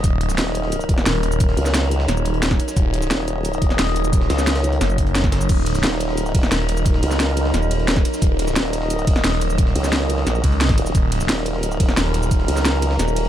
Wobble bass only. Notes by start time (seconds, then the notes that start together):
0.38 D#1
0.89 D#1
1.57 C#2
3.11 D#1
3.62 D#1
4.30 C#2
5.83 D#1
6.35 D#1
7.03 C#2
8.56 D#1
9.07 D#1
9.75 C#2
10.27 A#1
10.78 D#1
11.29 D#1
11.80 D#1
12.48 C#2